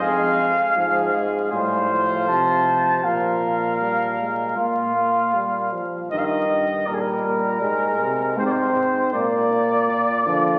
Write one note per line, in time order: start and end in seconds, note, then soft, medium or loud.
0.01 0.50 F2 medium
0.01 0.78 G#3 medium
0.01 0.49 G#4 medium
0.01 1.21 F5 medium
0.76 1.48 G#2 medium
0.76 1.14 F3 medium
0.76 1.48 G#4 medium
1.14 1.53 G#3 medium
1.52 2.29 A2 medium
1.52 1.89 G3 medium
1.52 3.01 C5 medium
1.52 2.24 F5 medium
1.90 3.02 F3 medium
2.28 3.06 C3 medium
2.28 3.05 A5 medium
3.03 4.57 A#2 medium
3.03 3.79 F3 medium
3.03 4.54 A#4 medium
3.03 4.57 F5 medium
3.81 4.18 G3 medium
4.19 4.56 G#3 medium
4.56 5.70 A#2 soft
4.56 4.95 A#3 medium
4.56 5.69 F4 medium
4.56 5.70 F5 medium
4.96 5.36 A#3 soft
5.34 5.74 G3 medium
5.72 6.10 F3 soft
6.10 6.46 G2 medium
6.10 6.70 D#3 medium
6.10 6.20 D#5 medium
6.18 6.27 F5 medium
6.25 6.88 D#5 medium
6.49 6.86 G2 medium
6.87 7.24 A#2 medium
6.87 7.61 G3 medium
6.87 6.95 A#4 medium
6.94 7.02 G#4 soft
7.01 8.38 A#4 medium
7.24 7.61 A#2 medium
7.62 8.01 G#2 medium
7.62 8.39 G#3 medium
8.00 8.37 C3 medium
8.38 8.75 G#2 medium
8.38 9.12 C4 loud
8.38 8.47 C5 medium
8.46 8.53 D5 medium
8.52 9.13 C5 medium
8.75 9.14 G#2 medium
9.13 9.88 A#2 medium
9.13 10.24 A#3 medium
9.13 10.59 D5 medium
9.89 10.26 A#2 medium
10.26 10.59 D3 medium
10.26 10.59 F3 medium